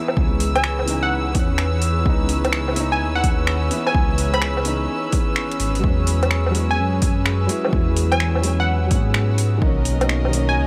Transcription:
0.00 0.13 E3 medium
0.00 0.17 B3 medium
0.00 9.58 C#4 medium
0.00 0.90 D#4 loud
0.00 0.21 E4 medium
0.00 5.80 G#4 medium
0.00 9.58 B4 medium
0.00 9.58 E6 medium
0.08 low woodblock medium
0.13 0.87 C#2 loud
0.13 0.84 E3 medium
0.13 0.86 B3 medium
0.13 kick loud
0.21 0.88 E4 medium
0.40 open hi-hat medium
0.56 0.80 G#5 medium
0.56 closed hi-hat soft
0.56 low woodblock medium
0.64 finger snap loud
0.79 low woodblock soft
0.86 1.36 C#2 medium
0.86 1.30 E3 medium
0.86 1.33 B3 medium
0.86 open hi-hat medium
0.90 1.34 D#4 medium
1.03 1.35 F#5 medium
1.31 2.05 E2 loud
1.31 2.00 E3 medium
1.31 kick loud
1.31 open hi-hat medium
1.35 2.04 B3 medium
1.35 2.06 C#4 medium
1.58 finger snap loud
1.82 open hi-hat medium
2.01 2.72 E3 medium
2.05 2.76 C#2 loud
2.05 2.75 B3 medium
2.05 2.76 D#4 loud
2.05 kick loud
2.29 open hi-hat medium
2.45 closed hi-hat soft
2.45 low woodblock medium
2.53 finger snap loud
2.68 3.67 E4 medium
2.68 low woodblock soft
2.76 3.02 C#2 medium
2.76 3.69 B3 medium
2.76 3.71 D#4 loud
2.76 open hi-hat medium
2.92 3.57 G#5 medium
3.00 3.70 D#2 medium
3.15 3.40 F#5 medium
3.24 kick loud
3.24 open hi-hat medium
3.47 finger snap loud
3.69 3.89 E3 medium
3.69 3.93 B3 medium
3.69 3.94 E4 medium
3.69 open hi-hat medium
3.87 4.11 G#5 medium
3.87 low woodblock medium
3.91 4.62 E3 medium
3.95 4.65 C#2 loud
3.95 4.63 B3 medium
3.95 4.66 E4 loud
3.95 kick loud
4.18 open hi-hat medium
4.34 4.81 B5 medium
4.34 closed hi-hat soft
4.34 low woodblock medium
4.42 finger snap loud
4.57 low woodblock soft
4.63 4.88 C#2 medium
4.63 5.07 E3 medium
4.63 5.11 B3 medium
4.63 5.12 D#4 medium
4.63 open hi-hat medium
5.09 5.80 E3 medium
5.09 open hi-hat medium
5.13 5.82 B3 medium
5.13 kick loud
5.17 5.84 C#4 medium
5.36 finger snap loud
5.52 closed hi-hat soft
5.60 5.82 G#1 medium
5.60 open hi-hat medium
5.75 open hi-hat soft
5.80 6.49 F#3 medium
5.84 6.54 E2 loud
5.84 6.53 G#3 medium
5.84 6.55 C#4 loud
5.84 9.58 G#4 medium
5.84 kick loud
6.07 open hi-hat medium
6.23 closed hi-hat soft
6.23 low woodblock medium
6.31 finger snap loud
6.46 low woodblock soft
6.50 6.79 E2 medium
6.50 7.45 F#3 medium
6.50 7.47 G#3 medium
6.55 7.49 C#4 loud
6.55 open hi-hat medium
6.71 7.35 G#5 medium
6.78 7.48 F#2 medium
7.02 kick loud
7.02 open hi-hat medium
7.26 finger snap loud
7.47 7.66 F#3 medium
7.47 7.70 G#3 medium
7.47 7.72 E4 loud
7.47 open hi-hat medium
7.65 8.39 F#3 medium
7.65 low woodblock medium
7.72 8.43 E2 loud
7.72 8.41 G#3 medium
7.72 8.43 E4 loud
7.72 kick loud
7.97 open hi-hat medium
8.12 8.36 G#5 medium
8.12 closed hi-hat soft
8.12 low woodblock medium
8.20 finger snap loud
8.35 low woodblock soft
8.41 8.92 E2 medium
8.41 8.85 F#3 medium
8.41 8.89 G#3 medium
8.41 open hi-hat medium
8.45 8.90 C#4 medium
8.60 8.91 F#5 medium
8.87 9.58 F#3 medium
8.91 9.61 G#2 loud
8.91 9.60 G#3 medium
8.91 9.62 B3 medium
8.91 kick loud
8.91 open hi-hat medium
9.14 finger snap loud
9.38 open hi-hat medium
9.58 10.32 B1 loud
9.58 10.27 D#3 medium
9.58 10.67 F#4 medium
9.58 10.67 A#4 medium
9.58 10.67 D#5 medium
9.62 10.31 A#3 medium
9.62 10.33 C#4 loud
9.62 kick loud
9.85 open hi-hat medium
10.01 closed hi-hat soft
10.01 low woodblock medium
10.09 finger snap loud
10.25 10.67 D#3 medium
10.25 low woodblock soft
10.33 10.58 B1 medium
10.33 10.67 A#3 medium
10.33 open hi-hat medium
10.37 10.67 C#4 loud
10.49 10.67 G#5 medium
10.57 10.67 C#2 medium

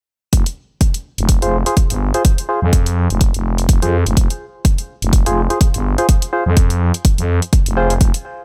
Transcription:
0.33 0.44 F1 medium
0.33 kick loud
0.33 closed hi-hat medium
0.46 closed hi-hat soft
0.81 kick loud
0.81 closed hi-hat medium
0.94 closed hi-hat soft
1.18 1.40 F1 medium
1.18 closed hi-hat soft
1.29 kick loud
1.29 closed hi-hat medium
1.42 1.64 F1 medium
1.42 1.57 F4 medium
1.42 1.57 G#4 medium
1.42 1.57 C5 loud
1.42 closed hi-hat soft
1.66 1.75 F4 medium
1.66 1.75 G#4 medium
1.66 1.75 C5 medium
1.66 closed hi-hat soft
1.77 kick loud
1.77 closed hi-hat medium
1.90 2.12 G1 medium
1.90 closed hi-hat soft
2.14 2.23 F4 medium
2.14 2.23 G#4 medium
2.14 2.23 C5 loud
2.14 closed hi-hat soft
2.25 kick loud
2.25 closed hi-hat medium
2.38 closed hi-hat soft
2.49 2.60 F4 medium
2.49 2.60 G#4 medium
2.49 2.60 C5 medium
2.62 3.08 F2 medium
2.73 kick loud
2.73 closed hi-hat medium
2.86 closed hi-hat soft
3.10 3.32 F1 medium
3.10 closed hi-hat soft
3.21 kick loud
3.21 closed hi-hat medium
3.34 3.67 F1 medium
3.34 closed hi-hat medium
3.58 closed hi-hat soft
3.69 3.80 F1 medium
3.69 kick loud
3.69 closed hi-hat medium
3.82 4.04 F2 medium
3.82 3.97 F4 medium
3.82 3.97 G#4 medium
3.82 3.97 C5 medium
3.82 closed hi-hat soft
4.06 4.15 F1 medium
4.06 closed hi-hat soft
4.17 4.28 F1 medium
4.17 kick loud
4.17 closed hi-hat medium
4.30 closed hi-hat soft
4.65 kick loud
4.65 closed hi-hat medium
4.78 closed hi-hat soft
5.02 5.24 F1 medium
5.02 closed hi-hat soft
5.13 kick loud
5.13 closed hi-hat medium
5.26 5.48 F1 medium
5.26 5.41 F4 medium
5.26 5.41 G#4 medium
5.26 5.41 C5 loud
5.26 closed hi-hat soft
5.50 5.59 F4 medium
5.50 5.59 G#4 medium
5.50 5.59 C5 medium
5.50 closed hi-hat soft
5.61 kick loud
5.61 closed hi-hat medium
5.74 5.96 G1 medium
5.74 closed hi-hat soft
5.98 6.07 F4 medium
5.98 6.07 G#4 medium
5.98 6.07 C5 medium
5.98 closed hi-hat soft
6.09 kick loud
6.09 closed hi-hat medium
6.22 closed hi-hat soft
6.33 6.44 F4 medium
6.33 6.44 G#4 medium
6.33 6.44 C5 medium
6.46 6.92 F2 medium
6.57 kick loud
6.57 closed hi-hat medium
6.70 closed hi-hat soft
6.94 closed hi-hat soft
7.05 kick loud
7.05 closed hi-hat medium
7.18 7.40 F2 medium
7.18 closed hi-hat soft
7.42 closed hi-hat soft
7.53 kick loud
7.53 closed hi-hat medium
7.66 7.99 F1 medium
7.66 closed hi-hat soft
7.77 7.94 F4 medium
7.77 7.94 G#4 medium
7.77 7.94 C5 medium
7.90 closed hi-hat soft
8.01 8.12 F1 medium
8.01 kick loud
8.01 closed hi-hat medium
8.14 closed hi-hat soft

